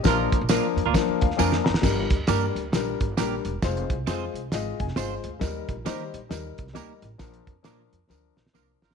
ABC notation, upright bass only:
X:1
M:4/4
L:1/16
Q:"Swing" 1/4=134
K:Bbmix
V:1 name="Upright bass" clef=bass
B,,,2 z B,,,2 z F,, D,, z2 D,,2 F,,2 _G,,, z | G,,,2 D,,2 G,,2 D,,2 B,,,2 G,,,2 B,,,2 =E,,,2 | F,,,2 C,,2 F,,2 C,,2 A,,,2 F,,,2 G,,,2 D,,2 | E,,2 B,,,2 E,2 B,,,2 E,,2 C,,2 D,,2 =A,,,2 |
B,,,2 F,,2 B,,2 F,,2 D,,2 B,,,2 C,,2 =A,,,2 |]